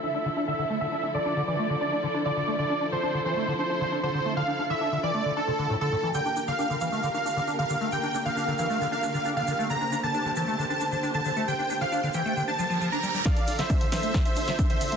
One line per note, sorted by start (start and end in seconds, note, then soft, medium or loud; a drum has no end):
0.00 6.10 D3 medium
0.00 6.10 F3 medium
0.00 0.07 D4 medium
0.00 6.10 E4 medium
0.00 6.10 A4 medium
0.00 0.40 E5 loud
0.14 0.18 D4 medium
0.25 0.29 D3 loud
0.37 0.45 D4 loud
0.48 0.53 D3 loud
0.48 0.75 E5 loud
0.59 0.64 D3 medium
0.70 0.78 A3 loud
0.81 0.87 D3 medium
0.81 1.09 E5 loud
0.92 0.95 D4 medium
1.03 1.07 D4 medium
1.14 1.18 D3 loud
1.14 1.42 D5 loud
1.25 1.34 D4 loud
1.37 1.42 D3 loud
1.48 1.56 E3 medium
1.48 1.75 D5 medium
1.59 1.67 A3 loud
1.70 1.75 D3 medium
1.81 1.84 D4 medium
1.81 2.18 D5 loud
1.92 1.95 D4 medium
2.03 2.07 D3 loud
2.14 2.23 D4 loud
2.25 2.31 D3 loud
2.25 2.53 D5 loud
2.37 2.42 D3 medium
2.48 2.56 A3 loud
2.59 2.64 D3 medium
2.59 2.86 D5 loud
2.70 2.73 D4 medium
2.81 2.84 D4 medium
2.92 2.95 D3 loud
2.92 3.20 C5 loud
3.03 3.12 D4 loud
3.14 3.20 D3 loud
3.25 3.34 E3 medium
3.25 3.53 C5 loud
3.37 3.45 A3 loud
3.48 3.53 D3 medium
3.59 3.62 D4 medium
3.59 3.96 C5 medium
3.70 3.73 D4 medium
3.81 3.84 D3 loud
3.92 4.00 D4 medium
4.03 4.09 D3 loud
4.03 4.31 C5 medium
4.14 4.20 D3 medium
4.25 4.34 A3 loud
4.37 4.42 D3 medium
4.37 4.64 F5 loud
4.48 4.51 D4 medium
4.59 4.62 D4 medium
4.70 4.73 D3 loud
4.70 4.97 E5 loud
4.81 4.89 D4 loud
4.92 4.98 D3 loud
5.03 5.12 E3 medium
5.03 5.31 D5 medium
5.14 5.23 A3 loud
5.25 5.31 D3 medium
5.37 5.40 D4 medium
5.37 5.73 A4 loud
5.48 5.51 C3 medium
5.59 5.67 D3 medium
5.70 5.75 A2 medium
5.81 5.89 D3 medium
5.81 6.09 A4 loud
5.92 5.95 A2 medium
6.03 6.12 E3 medium
6.14 6.20 D3 medium
6.14 13.21 D3 medium
6.14 13.22 A#3 medium
6.14 13.21 G4 medium
6.14 9.66 A#4 medium
6.14 6.42 G5 loud
6.14 shaker medium
6.25 6.29 D4 medium
6.25 shaker soft
6.37 6.40 D4 medium
6.37 shaker medium
6.48 6.51 D3 loud
6.48 6.75 F5 loud
6.48 shaker soft
6.59 6.67 D4 loud
6.59 shaker medium
6.70 6.75 D3 loud
6.70 shaker soft
6.81 6.89 E3 medium
6.81 7.09 F5 loud
6.81 shaker medium
6.92 7.00 A3 loud
6.92 shaker soft
7.03 7.09 D3 medium
7.03 shaker soft
7.14 7.18 D4 medium
7.14 7.51 F5 loud
7.14 shaker soft
7.25 7.29 D4 medium
7.25 shaker medium
7.37 7.40 D3 loud
7.37 shaker soft
7.48 7.56 D4 loud
7.48 shaker medium
7.59 7.64 D3 medium
7.59 7.86 F5 loud
7.59 shaker soft
7.70 7.75 D3 medium
7.70 shaker medium
7.81 7.89 A3 loud
7.81 shaker soft
7.91 7.98 D3 medium
7.91 8.20 G5 loud
7.91 shaker soft
8.03 8.07 D4 medium
8.03 shaker soft
8.14 8.18 D4 medium
8.14 shaker medium
8.25 8.29 D3 loud
8.25 8.53 F5 loud
8.25 shaker soft
8.37 8.45 D4 loud
8.37 shaker medium
8.48 8.53 D3 loud
8.48 shaker soft
8.59 8.67 E3 medium
8.59 8.86 F5 loud
8.59 shaker medium
8.70 8.78 A3 loud
8.70 shaker soft
8.81 8.87 D3 medium
8.81 shaker soft
8.92 8.95 D4 medium
8.92 9.29 F5 loud
8.92 shaker soft
9.03 9.07 D4 medium
9.03 shaker medium
9.14 9.18 D3 loud
9.14 shaker soft
9.25 9.34 D4 loud
9.25 shaker medium
9.37 9.42 D3 loud
9.37 9.64 F5 loud
9.37 shaker soft
9.47 9.53 D3 medium
9.47 shaker medium
9.59 9.67 A3 loud
9.59 shaker soft
9.70 9.75 D3 medium
9.70 13.22 C5 medium
9.70 9.97 A#5 loud
9.70 shaker soft
9.81 9.84 D4 medium
9.81 shaker soft
9.92 9.95 D4 medium
9.92 shaker medium
10.03 10.07 D3 loud
10.03 10.31 A5 loud
10.03 shaker soft
10.14 10.23 D4 loud
10.14 shaker soft
10.25 10.31 D3 loud
10.25 shaker soft
10.36 10.45 E3 medium
10.36 10.64 A5 medium
10.36 shaker medium
10.48 10.56 A3 loud
10.48 shaker soft
10.59 10.64 D3 medium
10.59 shaker soft
10.70 10.73 D4 medium
10.70 11.07 A5 loud
10.70 shaker soft
10.80 10.84 D4 medium
10.80 shaker medium
10.92 10.95 D3 loud
10.92 shaker soft
11.03 11.12 D4 loud
11.03 shaker medium
11.14 11.20 D3 loud
11.14 11.42 A5 medium
11.14 shaker soft
11.25 11.31 D3 medium
11.25 shaker medium
11.36 11.45 A3 loud
11.36 shaker soft
11.48 11.53 D3 medium
11.48 11.75 G5 loud
11.48 shaker soft
11.59 11.62 D4 medium
11.59 shaker soft
11.70 11.73 D4 medium
11.70 shaker medium
11.80 11.84 D3 loud
11.80 12.09 F5 loud
11.80 shaker soft
11.92 12.00 D4 loud
11.92 shaker soft
12.03 12.09 D3 loud
12.03 shaker soft
12.14 12.23 E3 medium
12.14 12.42 G5 loud
12.14 shaker medium
12.25 12.34 A3 loud
12.25 shaker soft
12.37 12.42 D3 medium
12.37 reverse cymbal medium
12.37 shaker medium
12.48 12.51 D4 medium
12.48 12.84 A5 loud
12.48 shaker soft
12.59 12.64 F3 medium
12.59 shaker medium
12.70 12.78 F3 medium
12.70 shaker soft
12.81 12.89 F3 medium
12.81 shaker soft
12.92 12.98 D4 medium
12.92 13.20 A#5 medium
12.92 shaker soft
13.03 13.09 G3 loud
13.03 shaker medium
13.14 13.20 G3 medium
13.14 shaker soft
13.25 13.31 D3 medium
13.25 14.97 D3 medium
13.25 14.97 F3 medium
13.25 14.97 A4 medium
13.25 13.53 D5 medium
13.25 14.97 E5 medium
13.25 13.53 F5 loud
13.25 kick loud
13.25 snare soft
13.25 closed hi-hat medium
13.25 riser medium
13.25 shaker medium
13.36 13.40 D4 medium
13.36 closed hi-hat medium
13.36 shaker soft
13.47 13.51 D4 medium
13.47 open hi-hat loud
13.47 shaker medium
13.59 13.62 D3 loud
13.59 13.86 C5 medium
13.59 13.86 E5 loud
13.59 snare soft
13.59 closed hi-hat medium
13.59 shaker soft
13.70 13.78 D4 loud
13.70 kick loud
13.70 closed hi-hat medium
13.70 shaker medium
13.81 13.87 D3 loud
13.81 closed hi-hat medium
13.81 shaker soft
13.92 14.00 E3 medium
13.92 14.20 C5 medium
13.92 14.20 E5 loud
13.92 snare medium
13.92 open hi-hat loud
13.92 shaker medium
14.03 14.12 A3 loud
14.03 closed hi-hat medium
14.03 shaker soft
14.14 14.20 D3 medium
14.14 kick loud
14.14 snare medium
14.14 closed hi-hat medium
14.14 shaker medium
14.25 14.29 D4 medium
14.25 14.62 C5 medium
14.25 14.62 E5 loud
14.25 closed hi-hat medium
14.25 shaker soft
14.36 14.40 D4 medium
14.36 open hi-hat loud
14.36 shaker medium
14.47 14.51 D3 loud
14.47 snare soft
14.47 closed hi-hat medium
14.47 shaker soft
14.59 14.67 D4 loud
14.59 kick loud
14.59 closed hi-hat medium
14.59 shaker medium
14.70 14.75 D3 loud
14.70 14.97 C5 medium
14.70 14.97 E5 medium
14.70 closed hi-hat medium
14.70 shaker soft
14.81 14.87 D3 medium
14.81 open hi-hat loud
14.81 shaker loud
14.92 14.97 A3 medium
14.92 closed hi-hat medium
14.92 shaker soft